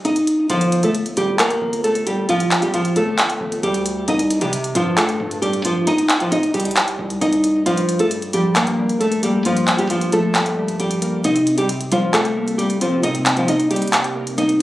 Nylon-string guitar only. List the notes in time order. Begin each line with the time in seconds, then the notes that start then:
0.05 D#4 D#5
0.50 F3 F4
0.83 A3 A4
1.17 G3 G4
1.39 A#3 A#4
1.84 A3 A4
2.07 G3 G4
2.29 F3 F4
2.62 G3 G4
2.74 F3 F4
2.96 A3 A4
3.63 G3 G4
4.08 D#4 D#5
4.42 G3 G4
4.76 F3 F4
4.97 A3 A4
5.42 G3 G4
5.65 F3 F4
5.87 D#4 D#5
6.21 F3 F4
6.32 D#4 D#5
6.54 G3 G4
7.21 D#4 D#5
7.66 F3 F4
8.00 A3 A4
8.34 G3 G4
8.56 A#3 A#4
9.00 A3 A4
9.23 G3 G4
9.46 F3 F4
9.79 G3 G4
9.90 F3 F4
10.13 A3 A4
10.80 G3 G4
11.25 D#4 D#5
11.58 G3 G4
11.92 F3 F4
12.14 A3 A4
12.58 G3 G4
12.81 F3 F4
13.03 D#4 D#5
13.37 F3 F4
13.48 D#4 D#5
13.71 G3 G4
14.38 D#4 D#5